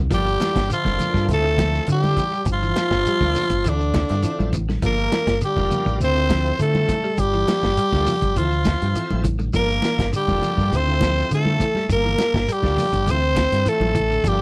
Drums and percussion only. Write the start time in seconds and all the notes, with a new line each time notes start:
0.11 kick, snare, closed hi-hat, shekere
0.27 shekere
0.40 snare, closed hi-hat, high conga, shekere
0.56 kick, snare, closed hi-hat, shekere
0.70 closed hi-hat, shekere
0.85 kick, snare, high conga, shekere
0.99 closed hi-hat, low conga, shekere
1.14 kick, snare, shekere
1.29 closed hi-hat, high conga, low conga, shekere
1.47 shekere
1.58 kick, snare, closed hi-hat, high conga, shekere
1.74 snare, shekere
1.87 closed hi-hat, shekere
2.04 high conga, shekere
2.17 kick, closed hi-hat, low conga, shekere
2.34 shekere
2.45 kick, closed hi-hat, shekere
2.63 shekere
2.75 snare, closed hi-hat, high conga, shekere
2.91 kick, snare, shekere
3.05 closed hi-hat, shekere
3.21 kick, high conga, shekere
3.34 open hi-hat, low conga, shekere
3.50 kick, closed hi-hat, shekere
3.64 closed hi-hat, shekere
3.81 shekere
3.94 kick, snare, closed hi-hat, high conga, low conga, shekere
4.09 snare, closed hi-hat, shekere
4.23 closed hi-hat, shekere
4.39 high conga, shekere
4.53 kick, closed hi-hat, low conga, shekere
4.69 snare, high conga, shekere
4.82 kick, closed hi-hat, shekere
4.98 shekere
5.12 snare, closed hi-hat, high conga, shekere
5.27 kick, snare, closed hi-hat, shekere
5.41 closed hi-hat, shekere
5.57 kick, high conga, shekere
5.71 closed hi-hat, low conga, shekere
5.86 kick, shekere
6.00 closed hi-hat, low conga, shekere
6.16 shekere
6.29 kick, snare, closed hi-hat, high conga, shekere
6.46 shekere
6.59 closed hi-hat, shekere
6.75 high conga, shekere
6.89 kick, closed hi-hat, high conga, low conga, shekere
7.04 shekere
7.17 kick, closed hi-hat, shekere
7.33 shekere
7.47 snare, closed hi-hat, high conga, shekere
7.63 kick, snare, shekere
7.77 closed hi-hat, shekere
7.92 kick, snare, high conga, shekere
8.06 open hi-hat, low conga, shekere
8.22 kick, closed hi-hat, shekere
8.36 closed hi-hat, low conga, shekere
8.52 shekere
8.65 kick, snare, closed hi-hat, high conga, low conga, shekere
8.80 closed hi-hat, shekere
8.95 closed hi-hat, shekere
9.10 high conga, shekere
9.24 kick, closed hi-hat, high conga, low conga, shekere
9.39 high conga, shekere
9.53 kick, closed hi-hat, shekere
9.70 shekere
9.82 snare, closed hi-hat, high conga, shekere
9.99 kick, snare, closed hi-hat, shekere
10.13 closed hi-hat, shekere
10.28 kick, high conga, shekere
10.42 closed hi-hat, low conga, shekere
10.58 kick, shekere
10.71 closed hi-hat, low conga, shekere
10.89 shekere
11.01 kick, snare, closed hi-hat, high conga, shekere
11.18 snare, shekere
11.31 closed hi-hat, shekere
11.46 high conga, shekere
11.59 kick, closed hi-hat, low conga, shekere
11.75 snare, high conga, shekere
11.90 kick, closed hi-hat, shekere
12.06 shekere
12.18 snare, closed hi-hat, high conga, shekere
12.34 kick, snare, shekere
12.48 closed hi-hat, shekere
12.63 kick, snare, high conga, shekere
12.77 open hi-hat, low conga, shekere
12.93 kick, closed hi-hat, shekere
13.07 closed hi-hat, high conga, low conga, shekere
13.23 shekere
13.36 kick, snare, closed hi-hat, high conga, low conga, shekere
13.52 snare, closed hi-hat, shekere
13.66 closed hi-hat, shekere
13.81 high conga, shekere
13.95 kick, closed hi-hat, low conga, shekere
14.12 shekere
14.24 kick, closed hi-hat, shekere